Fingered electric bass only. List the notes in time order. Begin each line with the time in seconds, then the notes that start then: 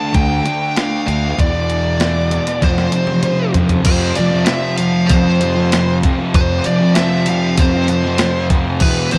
0.15 D2
1.07 D2
1.39 E2
2.63 F2
3.55 F2
3.86 F2
4.19 F3
5.11 F2
6.34 F2
6.66 F3
7.58 F2
8.81 E2
9.14 E3